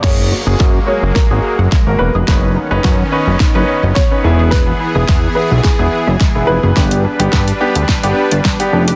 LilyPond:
<<
  \new Staff \with { instrumentName = "Grand piano" } { \time 4/4 \key fis \mixolydian \tempo 4 = 107 cis''4. cis''8 ais'4 r8 b'8~ | b'2. cis''4 | b'4. b'8 gis'4 r8 b'8~ | b'2.~ b'8 r8 | }
  \new Staff \with { instrumentName = "Synth arpeggio sound" } { \time 4/4 \key fis \mixolydian gis16 ais16 fis'16 gis'16 ais'16 r8 ais16 fis'16 gis'16 ais'16 fis''16 gis16 ais16 fis'16 gis'16 | b16 cis'16 dis'16 b'16 cis''16 r8 cis'16 dis'16 b'16 cis''16 dis''16 b16 cis'16 e'16 gis'16 | gis16 b16 e'16 gis'16 b'16 r8 b16 e'16 gis'16 b'16 e''16 gis16 b16 e'16 gis'16 | g16 b16 d'16 g'16 b'16 r8 b16 d'16 g'16 b'16 d''16 g16 b16 d'16 g'16 | }
  \new Staff \with { instrumentName = "Grand piano" } { \time 4/4 \key fis \mixolydian <ais fis' gis'>8 r16 <ais fis' gis'>8 r16 <ais fis' gis'>8 r16 <ais fis' gis'>8 r8 <ais fis' ais'>8 r16 | <cis' dis' b'>8 r16 <cis' dis' b'>8 r16 <cis' dis' b'>8 r16 <cis' dis' b'>8 r8 <cis' dis' b'>16 <b e' gis'>8~ | <b e' gis'>8 r16 <b e' gis'>8 r16 <b e' gis'>8 r16 <b e' gis'>8 r8 <b e' gis'>8 r16 | <b d' g'>8 r16 <b d' g'>8 r16 <b d' g'>8 r16 <b d' g'>8 r8 <b d' g'>8 r16 | }
  \new Staff \with { instrumentName = "Supersaw synth" } { \time 4/4 \key fis \mixolydian << { <fis ais>1 | <dis cis'>2.~ <dis cis'>8 <e gis'>8~ | <e gis'>1 | <g b'>1 | } \\ { gis1 | b1~ | b1 | d'1 | } >> }
  \new Staff \with { instrumentName = "Analog synth bass" } { \clef bass \time 4/4 \key fis \mixolydian fis,,8. fis,,16 fis,8 r16 fis,,16 r16 gis,,16 r16 fis,,16 r16 gis,,16 e,,16 eis,,16 | fis,,8. fis,,16 fis,8 r16 fis,,16 r16 fis,,16 r16 fis,,16 r8 e,,8~ | e,,8. e,,16 e,8 r16 b,,16 r16 e,,16 r16 fis,,16 r16 e,,16 eis,,16 fis,,16 | g,,8. g,,16 g,8 r16 d,16 r16 g,,16 r16 g,,16 r8 eis,,8 | }
  \new DrumStaff \with { instrumentName = "Drums" } \drummode { \time 4/4 <cymc bd sn>4 <bd sn>4 <bd sn>4 <bd sn>4 | <bd sn>4 <bd sn>4 <bd sn>4 <bd sn>4 | <bd sn>4 <bd sn>4 <bd sn>4 <bd sn>4 | <bd sn>16 hh8 hh16 <bd sn>16 hh8 hh16 <bd sn>16 hh8 hh16 <bd sn>16 hh8 hh16 | }
>>